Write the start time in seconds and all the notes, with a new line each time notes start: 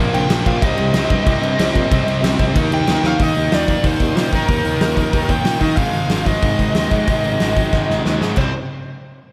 Already playing: A#2
0.00 F3 A#3
0.12 A#1 G5, crash
0.29 A#1 A#2 F3 A#3, snare, crash
0.45 A#1 A#2 F3 A#3 F5, kick, crash
0.62 C2 C3 G3 C4 D#5, kick, crash
0.78 C2, crash
0.94 C2 C3 G3 C4, snare, crash
1.09 G2 C3 G3 C4, kick, crash
1.26 C2 C3 G3 C4, kick, crash
1.41 G2 C3 G3 C4, crash
1.58 C2 C3 G3 C4, snare, crash
1.74 A#2 C3 G3 C4, kick, crash
1.90 C2 C3 G3 C4, kick, crash
2.05 C2, crash
2.22 C2 C3 G3 C4, snare, crash
2.38 C2 C3 G3 C4, kick, crash
2.54 D#2 D#3 A#3 D#4, kick, crash
2.71 D#2 G5, crash
2.87 D#2 D#3 A#3 D#4, snare, crash
3.03 D#2 D#3 A#3 D#4, snare
3.07 F5
3.18 D#2 D#3 A#3 D#4, kick, open hi-hat
3.23 D#5
3.35 D#2, open hi-hat
3.51 D#2 D#3 A#3 D#4 D5, snare, open hi-hat
3.68 D#3 A#3 D#4, kick, open hi-hat
3.83 D#2 D#3 A#3 D#4 C5, kick, open hi-hat
4.00 D#2, kick, open hi-hat
4.15 A#2 D#3 A#3 D#4, snare, open hi-hat
4.32 D#3 A#3 D#4 A#4, kick, open hi-hat
4.48 D#2 D#3 A#3 D#4, kick, open hi-hat
4.65 D#2, open hi-hat
4.81 D#2 D#3 A#3 D#4, snare, open hi-hat
4.96 D#3 A#3 D#4, kick, open hi-hat
5.12 D#2 D#3 A#3 D#4, kick, open hi-hat
5.29 D#2 G5, kick, open hi-hat
5.44 A#2 D#3 A#3 D#4, snare, open hi-hat
5.60 D#3 A#3 D#4 D#5, kick, open hi-hat
5.76 G#1 G#2 D#3 G#3 F5, kick, open hi-hat
5.93 G#1, open hi-hat
6.08 G#1 G#2 D#3 G#3, snare, open hi-hat
6.25 G#2 D#3 G#3 D#5, kick, open hi-hat
6.41 G#1 G#2 D#3 G#3, kick, open hi-hat
6.59 G#1, kick, open hi-hat
6.74 D#2 G#2 D#3 G#3, snare, open hi-hat
6.91 G#2 D#3 G#3, kick, open hi-hat
7.06 G#1 G#2 D#3 G#3, kick, open hi-hat
7.23 G#1, open hi-hat
7.40 G#1 G#2 D#3 G#3, snare, open hi-hat
7.56 G#2 D#3 G#3, kick, open hi-hat
7.73 G#1 G#2 D#3 G#3, kick, snare
7.90 G#1, snare
8.04 D#2 G#2 D#3 G#3, snare
8.21 G#2 D#3 G#3, snare
8.36 C2 C3 G3 C4 C5, kick, crash